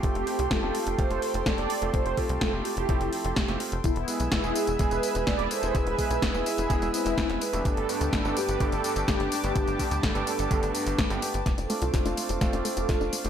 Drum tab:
HH |xxoxx-oxxxoxxxox|xxoxx-oxxxoxxxox|xxoxx-oxxxoxxxox|xxoxx-oxxxoxxxox|
TB |----------------|----------------|x-xxxxxxxxxxx-xx|x-xxxxxxxxxxx-xx|
SD |----o-------o---|----o-------oo--|----o-------o---|----o-------oo--|
BD |o---o---o---o---|o-o-o---o---o---|o---o---o---o---|o-o-o---o---o---|

HH |xxoxx-oxxxoxxxox|xxoxxxoxxxoxxxox|xxoxxxoxxxoxx-ox|
TB |x-xxxxxxxxxxx-xx|xxxxxxxxxxxxxxxx|xxxxxxxxxxxxxxxx|
SD |----o-------o---|----o-------oo--|o---o---o---o---|
BD |o---o---o---o---|o-o-o---o---o---|o---o---o---o---|